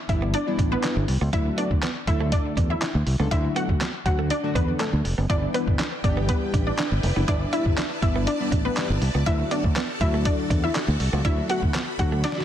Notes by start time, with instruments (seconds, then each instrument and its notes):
0.09 fingered electric bass G1, analog polysynth E3 G3 B3 D4 E4, synth pluck E4 E5, muted clean electric guitar stroke, kick, closed hi-hat
0.22 clean electric guitar B3
0.34 synth pluck D4 D5, closed hi-hat
0.47 analog polysynth E3 G3 B3 D4 E4
0.59 fingered electric bass A1, clean electric guitar D4, kick, closed hi-hat
0.72 synth pluck B3 B4
0.83 clean electric guitar D4, snare, clap, closed hi-hat
0.96 fingered electric bass G1
1.08 fingered electric bass C2, muted clean electric guitar stroke, open hi-hat
1.21 fingered electric bass C#2, clean electric guitar B3
1.33 fingered electric bass D2, analog polysynth D3 F#3 A3 D4 F#4, clean electric guitar D4, synth pluck E4 E5, kick, closed hi-hat
1.46 muted clean electric guitar stroke
1.58 clean electric guitar B3, synth pluck D4 D5, closed hi-hat
1.71 fingered electric bass D2, kick
1.83 clean electric guitar B3, snare, clap, closed hi-hat
2.07 fingered electric bass D2, analog polysynth D3 F#3 A3 D4 A4, synth pluck E4 E5, muted clean electric guitar stroke, kick, closed hi-hat
2.20 clean electric guitar A3
2.32 synth pluck D4 D5, kick, closed hi-hat
2.57 fingered electric bass E2, clean electric guitar D4, kick, closed hi-hat
2.70 synth pluck E4 E5
2.82 clean electric guitar D4, snare, clap, closed hi-hat
2.95 fingered electric bass D2
3.07 fingered electric bass C2, muted clean electric guitar stroke, open hi-hat
3.19 fingered electric bass C#2, analog polysynth D3 F#3 A3 D4 A4, clean electric guitar B3
3.31 fingered electric bass D2, analog polysynth D3 F#3 A3 D4 F#4, clean electric guitar D4, synth pluck E4 E5, kick, closed hi-hat
3.44 muted clean electric guitar stroke
3.56 clean electric guitar B3, synth pluck F#4 F#5, closed hi-hat
3.69 fingered electric bass D2, kick
3.81 clean electric guitar B3, snare, clap, closed hi-hat
4.05 fingered electric bass D2, analog polysynth D3 F#3 A3 D4 F#4, synth pluck F#4 F#5, muted clean electric guitar stroke, kick, closed hi-hat
4.19 clean electric guitar A3
4.30 synth pluck D4 D5, closed hi-hat
4.43 analog polysynth D3 F#3 A3 D4 F#4
4.55 fingered electric bass E2, synth pluck B3 B4, clean electric guitar D4, kick, closed hi-hat
4.80 synth pluck A3 A4, clean electric guitar D4, snare, clap, closed hi-hat
4.93 fingered electric bass D2
5.05 fingered electric bass F1, muted clean electric guitar stroke, open hi-hat
5.18 fingered electric bass F#1, clean electric guitar B3
5.29 fingered electric bass G1, analog polysynth E3 G3 B3 D4 E4, synth pluck D4 D5, string machine E4 B4 D5 G5, clean electric guitar E4, kick, closed hi-hat
5.43 muted clean electric guitar stroke
5.54 synth pluck B3 B4, clean electric guitar D4, closed hi-hat
5.67 fingered electric bass G1, kick
5.79 clean electric guitar D4, snare, clap, closed hi-hat
6.04 fingered electric bass G1, analog polysynth E3 G3 B3 D4 G4, synth pluck D4 D5, muted clean electric guitar stroke, kick, closed hi-hat
6.17 clean electric guitar B3
6.29 synth pluck B3 B4, kick, closed hi-hat
6.54 fingered electric bass A1, clean electric guitar D4, kick, closed hi-hat
6.67 synth pluck D4 D5
6.78 clean electric guitar D4, snare, clap, closed hi-hat
6.92 fingered electric bass G1
7.03 fingered electric bass F1, muted clean electric guitar stroke, open hi-hat
7.16 fingered electric bass F#1, analog polysynth E3 G3 B3 D4 E4, clean electric guitar B3
7.28 fingered electric bass G1, analog polysynth E3 G3 B3 D4 E4, synth pluck D4 D5, clean electric guitar E4, string machine A5, kick, closed hi-hat
7.41 muted clean electric guitar stroke
7.53 clean electric guitar D4, synth pluck E4 E5, closed hi-hat
7.66 fingered electric bass G1, kick
7.77 clean electric guitar D4, snare, clap, closed hi-hat
8.02 fingered electric bass G1, analog polysynth E3 G3 B3 D4 E4, synth pluck E4 E5, muted clean electric guitar stroke, kick, closed hi-hat
8.16 clean electric guitar B3
8.27 synth pluck D4 D5, closed hi-hat
8.40 analog polysynth E3 G3 B3 D4 E4
8.52 fingered electric bass A1, clean electric guitar D4, kick, closed hi-hat
8.65 synth pluck B3 B4
8.77 clean electric guitar D4, snare, clap, closed hi-hat
8.90 fingered electric bass G1
9.01 fingered electric bass C2, muted clean electric guitar stroke, open hi-hat
9.15 fingered electric bass C#2, clean electric guitar B3
9.26 fingered electric bass D2, analog polysynth D3 F#3 A3 D4 F#4, clean electric guitar D4, synth pluck E4 E5, string machine F#4 A4 A5, kick, closed hi-hat
9.40 muted clean electric guitar stroke
9.51 clean electric guitar B3, synth pluck D4 D5, closed hi-hat
9.64 fingered electric bass D2, kick
9.76 clean electric guitar B3, snare, clap, closed hi-hat
10.01 fingered electric bass D2, analog polysynth D3 F#3 A3 D4 F#4, synth pluck E4 E5, muted clean electric guitar stroke, kick, closed hi-hat
10.14 clean electric guitar A3
10.25 synth pluck D4 D5, kick, closed hi-hat
10.50 fingered electric bass E2, clean electric guitar D4, kick, closed hi-hat
10.64 synth pluck E4 E5
10.75 clean electric guitar D4, snare, clap, closed hi-hat
10.88 fingered electric bass D2
11.00 fingered electric bass C2, muted clean electric guitar stroke, open hi-hat
11.13 fingered electric bass C#2, analog polysynth D3 F#3 A3 D4 F#4, clean electric guitar B3
11.24 fingered electric bass D2, analog polysynth D3 F#3 A3 D4 F#4, clean electric guitar D4, synth pluck E4 E5, string machine B5, kick, closed hi-hat
11.38 muted clean electric guitar stroke
11.49 clean electric guitar B3, synth pluck F#4 F#5, closed hi-hat
11.63 fingered electric bass D2, kick
11.74 clean electric guitar B3, snare, clap, closed hi-hat
11.99 fingered electric bass D2, analog polysynth D3 F#3 A3 D4 F#4, synth pluck F#4 F#5, muted clean electric guitar stroke, kick, closed hi-hat
12.12 clean electric guitar A3
12.24 synth pluck D4 D5, snare, closed hi-hat
12.32 snare
12.37 analog polysynth D3 F#3 A3 D4 F#4, snare